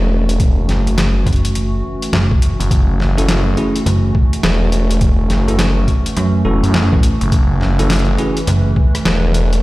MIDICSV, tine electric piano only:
0, 0, Header, 1, 2, 480
1, 0, Start_track
1, 0, Key_signature, 3, "minor"
1, 0, Tempo, 576923
1, 332, Time_signature, 4, 2, 24, 8
1, 8008, End_track
2, 0, Start_track
2, 0, Title_t, "Tine electric piano"
2, 0, Program_c, 0, 4
2, 2641, Note_on_c, 0, 64, 83
2, 2641, Note_on_c, 0, 66, 80
2, 2642, Note_on_c, 0, 69, 95
2, 2643, Note_on_c, 0, 61, 94
2, 2869, Note_off_c, 0, 64, 0
2, 2869, Note_off_c, 0, 66, 0
2, 2869, Note_off_c, 0, 69, 0
2, 2870, Note_off_c, 0, 61, 0
2, 2971, Note_on_c, 0, 61, 86
2, 2971, Note_on_c, 0, 68, 89
2, 2972, Note_on_c, 0, 66, 75
2, 2973, Note_on_c, 0, 64, 77
2, 3141, Note_off_c, 0, 61, 0
2, 3141, Note_off_c, 0, 66, 0
2, 3141, Note_off_c, 0, 68, 0
2, 3142, Note_off_c, 0, 64, 0
2, 4558, Note_on_c, 0, 64, 70
2, 4558, Note_on_c, 0, 66, 68
2, 4558, Note_on_c, 0, 69, 90
2, 4559, Note_on_c, 0, 61, 75
2, 4678, Note_off_c, 0, 64, 0
2, 4678, Note_off_c, 0, 66, 0
2, 4678, Note_off_c, 0, 69, 0
2, 4679, Note_off_c, 0, 61, 0
2, 5365, Note_on_c, 0, 61, 93
2, 5366, Note_on_c, 0, 64, 84
2, 5367, Note_on_c, 0, 66, 85
2, 5367, Note_on_c, 0, 69, 100
2, 5724, Note_off_c, 0, 61, 0
2, 5725, Note_off_c, 0, 64, 0
2, 5725, Note_off_c, 0, 66, 0
2, 5725, Note_off_c, 0, 69, 0
2, 5759, Note_on_c, 0, 64, 67
2, 5759, Note_on_c, 0, 71, 79
2, 5761, Note_on_c, 0, 61, 75
2, 5761, Note_on_c, 0, 66, 66
2, 5879, Note_off_c, 0, 61, 0
2, 5879, Note_off_c, 0, 64, 0
2, 5879, Note_off_c, 0, 71, 0
2, 5880, Note_off_c, 0, 66, 0
2, 6482, Note_on_c, 0, 61, 93
2, 6482, Note_on_c, 0, 69, 98
2, 6483, Note_on_c, 0, 64, 83
2, 6484, Note_on_c, 0, 66, 77
2, 6709, Note_off_c, 0, 61, 0
2, 6709, Note_off_c, 0, 69, 0
2, 6710, Note_off_c, 0, 64, 0
2, 6710, Note_off_c, 0, 66, 0
2, 6808, Note_on_c, 0, 61, 82
2, 6809, Note_on_c, 0, 64, 77
2, 6809, Note_on_c, 0, 66, 74
2, 6810, Note_on_c, 0, 68, 93
2, 6979, Note_off_c, 0, 61, 0
2, 6979, Note_off_c, 0, 64, 0
2, 6979, Note_off_c, 0, 66, 0
2, 6980, Note_off_c, 0, 68, 0
2, 8008, End_track
0, 0, End_of_file